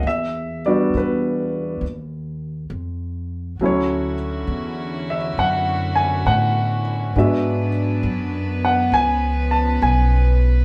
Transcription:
0.03 upright bass E2
0.07 grand piano E5
0.66 grand piano G3 B3 D4 F#4 D5
0.94 upright bass E2, grand piano B4
1.81 upright bass D#2
2.70 upright bass F2
3.59 upright bass D2, string section D3 C#4 E4 F#4, grand piano F#3 A3 C#4
3.63 grand piano E4 C#5
4.47 upright bass E2
5.10 grand piano E5
5.38 upright bass F#2, grand piano F#5
5.95 grand piano G#5
6.26 upright bass A2, grand piano F#5
7.13 upright bass G#2, string section F#3 B3 D4 B4, grand piano G#3 B3 D4
7.18 grand piano F#4 E5
8.03 upright bass F#2
8.65 grand piano F#5
8.92 upright bass C#2, string section F3 C#4, grand piano G#5
9.51 grand piano A5
9.82 upright bass B1, grand piano G#5

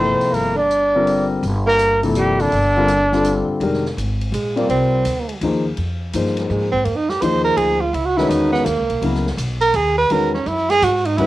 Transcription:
Already playing: upright bass G1, grand piano C3 F3, tenor saxophone C4, trumpet C5
0.00 grand piano A#3 E4 A4
0.21 muted upright bass stroke, open hi-hat
0.32 upright bass G1, tenor saxophone A#3, trumpet A#4, open hi-hat
0.56 tenor saxophone D4, trumpet D5
0.70 closed hi-hat
0.95 grand piano D3 G3 C4 F4 A#4
1.07 open hi-hat
1.43 upright bass G1, open hi-hat
1.66 tenor saxophone A#3, trumpet A#4
1.79 closed hi-hat
2.03 grand piano C3 F3 A#3 E4 A4, open hi-hat
2.15 tenor saxophone G3, trumpet G4, closed hi-hat
2.39 tenor saxophone D3, trumpet D4, open hi-hat
2.52 upright bass G1, open hi-hat
2.77 grand piano D3 G3 C4 F4 A#4
2.88 closed hi-hat
3.12 grand piano D3 G3 C4 F4 A4, snare
3.25 closed hi-hat
3.48 muted upright bass stroke
3.60 upright bass F1, grand piano D#3 G#3 D4 G4 A#4, ride
3.74 snare
3.86 snare
3.97 upright bass G#1, hi-hat pedal, ride
4.21 ride
4.32 upright bass A#1, tenor saxophone G#3, hi-hat pedal, ride
4.56 grand piano G3 C4 F4 A#4 D5, tenor saxophone A#3, ride
4.69 upright bass C2, tenor saxophone C4, ride
5.05 upright bass D2, hi-hat pedal, ride
5.29 ride
5.41 upright bass D#2, grand piano F3 A#3 D#4 G#4 C5, ride
5.77 upright bass F2, ride
6.13 upright bass G2, grand piano F3 A#3 D#4 G#4 C5, hi-hat pedal, ride
6.26 snare
6.37 snare, ride
6.49 upright bass G#2, tenor saxophone G#3, hi-hat pedal
6.72 tenor saxophone C4, kick
6.85 upright bass F2, tenor saxophone A#3, ride
6.96 tenor saxophone D#4
7.09 tenor saxophone G4, snare
7.22 upright bass D#2, grand piano F3 A#3 D#4 G#4 C5, tenor saxophone C5, hi-hat pedal, ride
7.44 tenor saxophone A#4
7.57 upright bass D2, tenor saxophone G#4, ride
7.81 tenor saxophone F4
7.93 upright bass C#2, tenor saxophone E4, ride
8.06 tenor saxophone F#4
8.17 grand piano D#3 G#3 C#4 F#4 B4, tenor saxophone E4, snare
8.29 upright bass E2, tenor saxophone D#4, hi-hat pedal, ride
8.52 tenor saxophone B3, snare
8.66 upright bass D#2, tenor saxophone A#3, hi-hat pedal, ride
8.77 upright bass C#2
8.89 upright bass B1, ride
9.02 upright bass C#2, grand piano C#3 F#3 B3 E4 A#4, ride
9.15 snare
9.27 snare
9.37 upright bass B1, hi-hat pedal, ride
9.61 tenor saxophone A#4, ride
9.74 upright bass D#2, tenor saxophone G#4, ride
9.98 tenor saxophone B4
10.10 upright bass E2, grand piano D#3 G#3 C#4 F#4 B4, tenor saxophone A#4, ride
10.34 tenor saxophone C#4, snare
10.46 upright bass F#2, tenor saxophone E4, hi-hat pedal, ride
10.70 tenor saxophone G#4, snare, ride
10.82 upright bass G#2, tenor saxophone F#4, hi-hat pedal, ride
11.05 tenor saxophone D#4, ride
11.18 upright bass E2, grand piano D#3 G#3 C#4 F#4 B4, tenor saxophone E4, ride

